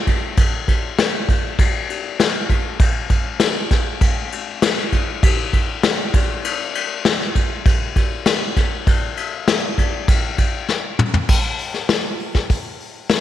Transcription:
0.07 kick medium
0.07 ride medium
0.37 kick loud
0.37 ride medium
0.68 kick medium
0.68 ride medium
0.99 snare loud
0.99 ride loud
1.29 kick medium
1.29 ride medium
1.59 kick loud
1.59 ride medium
1.90 ride medium
2.20 snare loud
2.20 ride medium
2.50 kick medium
2.50 ride medium
2.79 kick loud
2.79 ride medium
3.10 kick medium
3.10 ride medium
3.40 snare loud
3.40 ride loud
3.71 kick medium
3.71 snare soft
3.71 ride medium
4.01 kick loud
4.01 ride medium
4.32 ride medium
4.62 snare loud
4.62 ride loud
4.78 snare soft
4.92 kick medium
4.92 ride medium
5.23 kick loud
5.23 ride loud
5.53 kick medium
5.53 ride medium
5.83 snare loud
5.83 ride loud
6.14 kick loud
6.14 ride medium
6.44 ride medium
6.75 ride medium
7.05 snare loud
7.05 ride medium
7.21 snare soft
7.35 kick medium
7.35 ride medium
7.66 kick loud
7.66 ride medium
7.96 kick medium
7.96 ride medium
8.26 snare loud
8.26 ride medium
8.57 kick medium
8.57 snare soft
8.57 ride medium
8.87 kick loud
8.87 ride medium
9.17 ride medium
9.48 snare loud
9.48 ride medium
9.78 kick medium
9.78 ride medium
10.08 kick loud
10.08 ride loud
10.38 kick medium
10.38 ride medium
10.69 snare medium
10.99 mid tom medium
11.14 floor tom medium
11.29 kick loud
11.29 crash loud
11.59 open hi-hat medium
11.74 snare soft
11.89 snare loud
11.89 open hi-hat medium
12.20 open hi-hat medium
12.34 kick medium
12.34 snare soft
12.50 kick loud
12.50 open hi-hat medium
12.80 open hi-hat medium
13.10 snare loud
13.10 open hi-hat loud

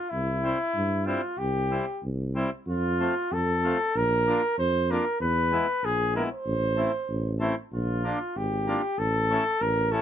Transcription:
0.00 0.11 F4 medium
0.10 0.53 C2 medium
0.10 1.07 E4 loud
0.43 0.58 G3 medium
0.43 0.58 C4 medium
0.43 0.58 E4 medium
0.75 1.17 G2 medium
1.05 1.21 G3 medium
1.05 1.21 C4 medium
1.05 1.21 E4 medium
1.05 1.39 F4 medium
1.38 1.81 C2 medium
1.38 2.03 G4 medium
1.70 1.85 G3 medium
1.70 1.85 C4 medium
1.70 1.86 E4 medium
2.03 2.45 C2 medium
2.35 2.50 G3 medium
2.35 2.50 C4 medium
2.35 2.50 E4 medium
2.67 3.09 F2 loud
2.67 3.34 F4 medium
3.00 3.14 A3 medium
3.00 3.14 C4 medium
3.00 3.15 F4 medium
3.31 3.73 F2 medium
3.31 3.98 A4 loud
3.63 3.77 A3 medium
3.63 3.78 C4 medium
3.63 3.78 F4 medium
3.95 4.36 A#1 loud
3.95 4.58 A#4 loud
4.27 4.41 A#3 medium
4.27 4.41 D4 medium
4.27 4.42 F4 medium
4.58 4.99 F2 loud
4.58 4.93 C5 loud
4.90 5.04 A#3 medium
4.90 5.05 D4 medium
4.90 5.05 F4 medium
4.90 5.20 A#4 medium
5.21 5.61 E2 loud
5.21 5.86 B4 loud
5.52 5.66 G#3 medium
5.52 5.66 B3 medium
5.52 5.67 E4 medium
5.83 6.24 A#1 medium
5.83 6.15 G#4 loud
6.14 6.28 G#3 medium
6.14 6.29 B3 medium
6.14 6.29 E4 medium
6.14 6.22 A#4 medium
6.31 7.37 C5 medium
6.46 6.87 A1 loud
6.76 6.91 A3 medium
6.76 6.92 C4 medium
6.76 6.92 E4 medium
7.09 7.50 A1 medium
7.40 7.54 A3 medium
7.40 7.55 C4 medium
7.40 7.55 E4 medium
7.73 8.14 A#1 loud
7.73 8.38 F4 medium
8.04 8.18 A#3 medium
8.04 8.19 D4 medium
8.04 8.19 F4 medium
8.36 8.76 G#1 medium
8.36 9.00 G4 medium
8.67 8.81 A#3 medium
8.67 8.82 D4 medium
8.67 8.82 F4 medium
8.98 9.38 A1 loud
8.98 9.63 A4 loud
9.30 9.44 A3 medium
9.30 9.44 C#4 medium
9.30 9.44 E4 medium
9.61 10.01 A1 loud
9.61 9.93 A#4 loud
9.91 10.02 A3 medium
9.91 10.02 C#4 medium
9.91 10.02 E4 medium
9.91 10.02 A4 medium

